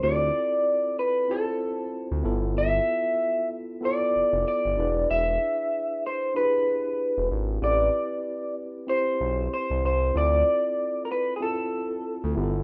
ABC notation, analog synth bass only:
X:1
M:4/4
L:1/16
Q:"Swing 16ths" 1/4=95
K:Ddor
V:1 name="Analog synth bass" clef=bass
D,,2 z8 z3 D,, G,,,2- | G,,,2 z8 F,,, F,,, z G,,, E,,,2 | E,,,2 z8 z3 E,,, ^G,,,2 | A,,,2 z8 B,,,2 z C,, C,,2 |
D,,2 z8 z3 D,, G,,,2 |]